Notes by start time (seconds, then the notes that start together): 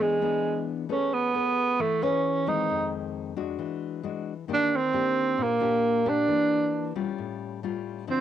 0.00 E3 G#3 B3 D4 G#4
0.22 B3 D4 G#4
0.89 A3 C#4 G#4 B4
1.14 B3
1.34 C#4 G#4 B4
1.79 E3 A3
2.02 C#4 G#4 B4
2.47 D#3 G#3 C4 D#4
2.69 F2
3.36 G#3 D4 F#4
3.58 E3
4.03 G#3 D4 F#4
4.48 D#3 A#3 D4 G4
4.53 D4
4.76 C4
4.93 A#3 D4 G4
5.38 A#2
5.43 A#3
5.60 A#3 D4 G4
6.06 A#3 D4 G4
6.28 E3
6.96 G3 C#4 F4
7.18 A2
7.63 G3 C#4 F4
8.07 D3 F3 C4 E4